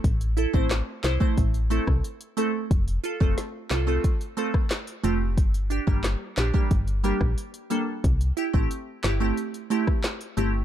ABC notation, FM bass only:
X:1
M:4/4
L:1/16
Q:1/4=90
K:Gdor
V:1 name="FM bass" clef=bass
A,,,3 A,,,2 z C,, z A,,,3 C,, z4 | F,,,2 z F,,, z2 C,,2 z6 F,,,2 | G,,,3 G,,,2 z B,,, z G,,,3 B,,, z4 | C,,2 z A,,, z2 G,,,2 z6 G,,,2 |]